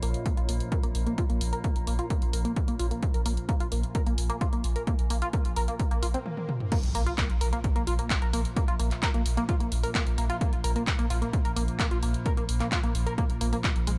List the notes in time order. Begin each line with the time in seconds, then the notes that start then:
Already playing: A#2 F3 F4 A#4 C#5 A#5
0.03 A#1 A#3, open hi-hat
0.14 closed hi-hat
0.26 A#3, kick, closed hi-hat
0.37 A#1 F4, closed hi-hat
0.49 A#1 A#3, open hi-hat
0.60 closed hi-hat
0.72 A#4, kick, closed hi-hat
0.83 A#1 A#3, closed hi-hat
0.95 A#1, open hi-hat
1.06 A#3, closed hi-hat
1.18 F4, kick, closed hi-hat
1.30 A#1 A#3, closed hi-hat
1.41 A#1, open hi-hat
1.53 A#4, closed hi-hat
1.64 A#3, kick, closed hi-hat
1.76 A#1, closed hi-hat
1.87 A#1 A#3, open hi-hat
1.99 F4, closed hi-hat
2.10 A#3, kick, closed hi-hat
2.22 A#1, closed hi-hat
2.33 A#1 A#4, open hi-hat
2.45 A#3, closed hi-hat
2.56 kick, closed hi-hat
2.68 A#1 A#3, closed hi-hat
2.79 A#1 F4, open hi-hat
2.91 A#3, closed hi-hat
3.03 kick, closed hi-hat
3.14 A#1 A#4 G#5, closed hi-hat
3.26 A#1 A#3, open hi-hat
3.37 closed hi-hat
3.49 A#3, kick, closed hi-hat
3.60 A#1 F4, closed hi-hat
3.72 A#1 A#3, open hi-hat
3.83 closed hi-hat
3.95 A#4, kick, closed hi-hat
4.07 A#1 A#3, closed hi-hat
4.18 A#1, open hi-hat
4.30 A#3, closed hi-hat
4.41 F4, kick, closed hi-hat
4.53 A#1 A#3, closed hi-hat
4.64 A#1, open hi-hat
4.76 A#4, closed hi-hat
4.87 A#3, kick, closed hi-hat
4.99 A#1, closed hi-hat
5.10 A#1 A#3, open hi-hat
5.22 F4, closed hi-hat
5.33 A#3, kick, closed hi-hat
5.45 A#1, closed hi-hat
5.56 A#1 A#4, open hi-hat
5.68 A#3, closed hi-hat
5.80 kick, closed hi-hat, swell
5.91 A#1 A#3, closed hi-hat
6.03 A#1 F4, open hi-hat
6.14 C4, closed hi-hat
6.26 high tom
6.37 high tom
6.49 mid tom
6.60 mid tom
6.72 A#2 F3 A#3, kick, closed hi-hat, crash, impact
6.83 A#1, closed hi-hat
6.95 A#1 A#3, open hi-hat
7.06 F4, closed hi-hat
7.18 A#3, kick, clap, closed hi-hat
7.30 A#1, closed hi-hat
7.41 A#1 A#4, open hi-hat
7.53 A#3, closed hi-hat
7.64 kick, closed hi-hat
7.76 A#1 A#3, closed hi-hat
7.87 A#1 F4, open hi-hat
7.99 A#3, closed hi-hat
8.10 kick, clap, closed hi-hat
8.22 A#1 A#4, closed hi-hat
8.33 A#1 A#3, open hi-hat
8.45 closed hi-hat
8.56 A#3, kick, closed hi-hat
8.68 A#1 F4, closed hi-hat
8.79 A#1 A#3, open hi-hat
8.91 clap, closed hi-hat
9.03 A#4, kick, clap, closed hi-hat
9.14 A#1 A#3, closed hi-hat
9.26 A#1, open hi-hat
9.37 A#3, closed hi-hat
9.49 F4, kick, closed hi-hat
9.60 A#1 A#3, closed hi-hat
9.72 A#1, open hi-hat
9.83 A#4, open hi-hat
9.95 A#3, kick, clap, closed hi-hat
10.07 A#1, closed hi-hat
10.18 A#1 A#3, open hi-hat
10.30 F4, closed hi-hat
10.41 A#3, kick, closed hi-hat
10.53 A#1, closed hi-hat
10.64 A#1 A#4, open hi-hat
10.76 A#3, closed hi-hat
10.87 kick, clap, closed hi-hat
10.99 A#1 A#3, closed hi-hat
11.10 A#1 F4, open hi-hat
11.22 A#3, closed hi-hat
11.33 kick, closed hi-hat
11.45 A#1 A#4, closed hi-hat
11.56 A#1 A#3, open hi-hat
11.68 closed hi-hat
11.79 A#3, kick, clap, closed hi-hat
11.91 A#1 F4, closed hi-hat
12.03 A#1 A#3, open hi-hat
12.14 closed hi-hat
12.26 A#4, kick, closed hi-hat
12.37 A#1 A#3, closed hi-hat
12.49 A#1, open hi-hat
12.60 A#3, clap, closed hi-hat
12.72 F4, kick, clap, closed hi-hat
12.83 A#1 A#3, closed hi-hat
12.95 A#1, open hi-hat
13.07 A#4, closed hi-hat
13.18 A#3, kick, closed hi-hat
13.30 A#1, closed hi-hat
13.41 A#1 A#3, open hi-hat
13.53 A#3, open hi-hat
13.64 F4, kick, clap, closed hi-hat
13.76 A#1, closed hi-hat
13.87 A#1 G#3, open hi-hat